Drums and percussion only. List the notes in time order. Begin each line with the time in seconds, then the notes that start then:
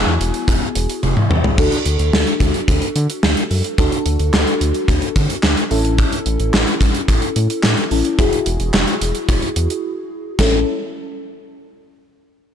0.21 closed hi-hat
0.34 closed hi-hat
0.48 kick, closed hi-hat
0.75 closed hi-hat
0.89 closed hi-hat
1.03 high tom
1.17 mid tom
1.31 mid tom
1.44 floor tom
1.58 kick, crash
1.72 closed hi-hat
1.86 closed hi-hat
1.99 closed hi-hat
2.13 snare
2.27 closed hi-hat
2.40 kick, closed hi-hat
2.54 closed hi-hat
2.68 kick, closed hi-hat
2.82 closed hi-hat
2.96 closed hi-hat
3.10 closed hi-hat
3.23 snare
3.37 closed hi-hat
3.51 open hi-hat
3.64 closed hi-hat
3.78 kick, closed hi-hat
3.92 closed hi-hat
4.06 closed hi-hat
4.19 closed hi-hat
4.34 snare, clap
4.47 closed hi-hat
4.61 closed hi-hat
4.74 closed hi-hat
4.88 kick, closed hi-hat
5.02 closed hi-hat
5.16 kick, closed hi-hat
5.30 closed hi-hat
5.43 snare, clap
5.57 closed hi-hat
5.71 open hi-hat
5.85 closed hi-hat
5.98 kick, closed hi-hat
6.12 closed hi-hat
6.26 closed hi-hat
6.40 closed hi-hat
6.54 snare, clap
6.67 closed hi-hat
6.81 kick, closed hi-hat
6.95 closed hi-hat
7.08 kick, closed hi-hat
7.22 closed hi-hat
7.36 closed hi-hat
7.50 closed hi-hat
7.63 snare, clap
7.77 closed hi-hat
7.91 open hi-hat
8.05 closed hi-hat
8.19 kick, closed hi-hat
8.33 closed hi-hat
8.46 closed hi-hat
8.60 closed hi-hat
8.74 snare, clap
8.87 closed hi-hat
9.01 closed hi-hat
9.15 closed hi-hat
9.29 kick, closed hi-hat
9.42 closed hi-hat
9.56 closed hi-hat
9.70 closed hi-hat
10.39 kick, snare, crash